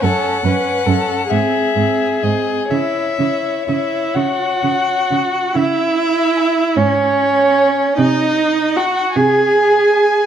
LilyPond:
<<
  \new Staff \with { instrumentName = "Violin" } { \time 6/8 \key cis \minor \tempo 4. = 49 fis''4. e''4 dis''8 | cis''2~ cis''8 r8 | r4 gis''8 r4 gis''8 | r4 gis''8 r4 gis''8 | }
  \new Staff \with { instrumentName = "Violin" } { \time 6/8 \key cis \minor a'8 b'8 a'8 gis'4. | e''4 e''8 fis''4. | e''4. cis''4. | dis''4 fis''8 gis''4. | }
  \new Staff \with { instrumentName = "Viola" } { \time 6/8 \key cis \minor cis'8 cis'8 cis'8 bis8 bis8 bis8 | e'8 e'8 e'8 fis'4. | e'4. cis'4. | dis'4 fis'8 gis'4. | }
  \new Staff \with { instrumentName = "Cello" } { \clef bass \time 6/8 \key cis \minor fis,8 fis,8 fis,8 gis,8 gis,8 gis,8 | cis8 cis8 cis8 cis8 cis8 cis8 | cis4. gis,4. | bis,4. bis,4. | }
>>